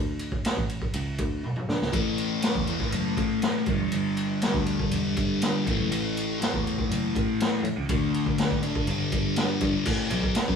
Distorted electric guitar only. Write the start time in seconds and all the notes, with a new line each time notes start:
1.92 A2 E3 A3
2.67 A2 E3 A3
3.67 G2 D3 G3
4.41 G2 D3 G3
5.66 A2 E3 A3
6.39 A2 E3 A3
7.89 D3 A3 D4
8.63 D3 A3 D4
8.88 G2 D3 G3
9.62 G2 D3 G3
9.86 A2 E3 A3
10.11 B2 F#3 B3
10.37 muted distorted electric guitar stroke
10.48 F#3 C#4 F#4